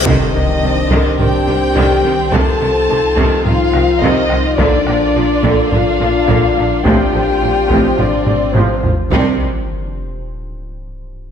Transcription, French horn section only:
X:1
M:4/4
L:1/8
Q:1/4=106
K:Cdor
V:1 name="French horn section"
E,4 G4 | A4 F2 E2 | D4 F4 | G4 D2 C2 |
C z6 z |]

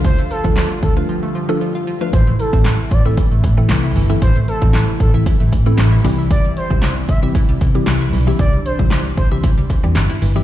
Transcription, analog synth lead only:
X:1
M:4/4
L:1/16
Q:1/4=115
K:Am
V:1 name="Analog synth lead"
c2 A3 z A z8 z | c2 A3 z d z8 z | c2 A3 z A z8 z | d2 c3 z e z8 z |
d2 c3 z c z8 z |]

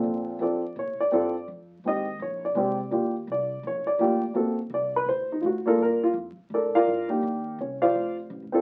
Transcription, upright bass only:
X:1
M:4/4
L:1/8
Q:"Swing" 1/4=167
K:Bb
V:1 name="Upright bass" clef=bass
B,,,2 F,,2 B,, z G,,2 | F,,2 E,,2 B,,,2 C,,2 | E,,2 C,,2 B,,, z F,,,2 | A,,,2 C,,2 D,,2 A,,2 |
G,,2 F,, z A,, z G,,2 | E,,2 C,,2 F,,,2 (3A,,, F,,, E,,, |]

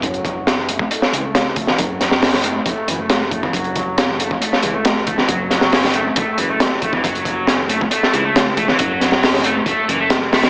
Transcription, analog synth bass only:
X:1
M:4/4
L:1/8
Q:1/4=137
K:F#m
V:1 name="Analog synth bass" clef=bass
F,,,4 z C,,3 | F,,,4 F,,, F,,,3 | F,,,4 z C,,3 | F,,,4 F,,, F,,,3 |
F,,,4 z C,,3 | F,,,4 F,,, F,,,3 |]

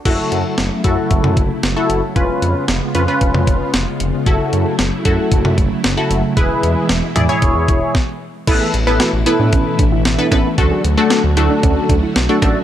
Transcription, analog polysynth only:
X:1
M:4/4
L:1/16
Q:1/4=114
K:A
V:1 name="Analog polysynth"
[EFA]4 z2 [EFA]4 z3 [EFA]2 z | [C^EB]4 z2 [CEB] [CEB]4- [CEB] z4 | [EFA]4 z2 [EFA]4 z3 [EFA]2 z | [EGB]4 z2 [EGd] [EGc]4- [EGc] z4 |
[B,EAB]2 z [B,EAB]2 z [B,EAB]4 z3 [B,EAB] [B,EAB] z | [A,DFA]2 z [A,DFA]2 z [A,DFA]4 z3 [A,DFA] [A,DFA] z |]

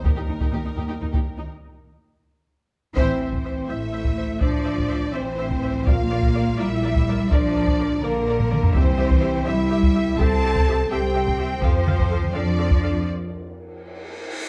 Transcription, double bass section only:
X:1
M:6/8
L:1/16
Q:3/8=83
K:Eblyd
V:1 name="Double bass section" clef=bass
E,, z E,, z E,, z E,, z E,, z3 | z12 | [K:Aphr] A,,,6 A,,,6 | A,,,6 A,,,6 |
B,,,6 B,,,6 | B,,,6 B,,,6 | C,,6 C,,6 | C,,6 C,,6 |
F,,6 F,,6 | z12 |]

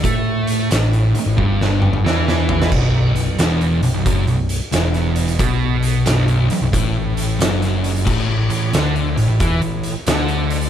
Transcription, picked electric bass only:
X:1
M:4/4
L:1/16
Q:"Swing" 1/4=90
K:Bm
V:1 name="Picked electric bass" clef=bass
A,,4 A,,,2 z A,,, G,,,4 E,,4 | B,,,,2 B,,,,2 E,,,2 B,,,, B,,,, F,,, B,,,,2 z E,,,4 | B,,,4 B,,,,2 z B,,,, A,,,4 F,,,4 | A,,,2 A,,,2 D,,2 A,,, A,,, E,, A,,,2 z D,,4 |]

